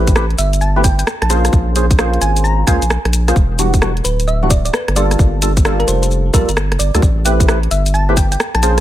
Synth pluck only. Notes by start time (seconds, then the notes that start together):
0.38 E5
0.61 A5
0.84 G5
0.99 G5
1.22 A5
1.30 A5
2.21 G#5
2.44 A#5
2.67 G#5
4.04 B4
4.28 E5
4.50 D5
4.65 D5
4.73 B4
4.96 D5
5.80 A#4
5.88 C5
6.02 C5
6.34 A#4
6.48 A#4
6.79 D5
7.71 E5
7.94 A5
8.17 G5
8.32 G5
8.55 A5
8.63 A5